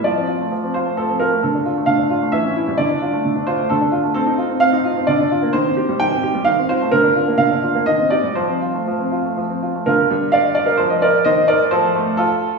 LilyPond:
\new Staff \with { instrumentName = "Grand piano" } { \time 3/4 \key d \minor \tempo 4 = 130 << { d''4. c''8 a'8 bes'8 | a'4 f''4 e''4 | d''4. c''8 a'8 r8 | \key bes \major a'4 f''4 d''4 |
c''4 g''4 f''8 c''8 | bes'4 f''4 ees''8 d''8 | c''2~ c''8 r8 | <f' bes'>4 <d'' f''>8 d''16 bes'16 c''16 ees''16 <bes' d''>8 |
<c'' ees''>8 <bes' d''>8 <a' c''>4 <f' a'>4 | } \\ { f16 c'16 f'16 a16 f16 c'16 f'16 a16 f16 c'16 f'16 a16 | d16 d'16 f'16 a16 d16 d'16 f'16 a16 e16 cis'16 e'16 g16 | d16 d'16 f'16 a16 d16 d'16 f'16 a16 d16 d'16 f'16 a16 | c'16 ees'16 f'16 c'16 c'16 ees'16 f'16 c'16 d16 d'16 f'16 bes16 |
ees16 c'16 g'16 g16 ees16 c'16 g'16 g16 ees16 c'16 f'16 a16 | d16 d'16 f'16 bes16 d16 d'16 f'16 bes16 ees16 c'16 g'16 g16 | f16 c'16 f'16 a16 f16 c'16 f'16 a16 f16 c'16 f'16 a16 | d8 g4. f4 |
ees4 f8 a4. | } >> }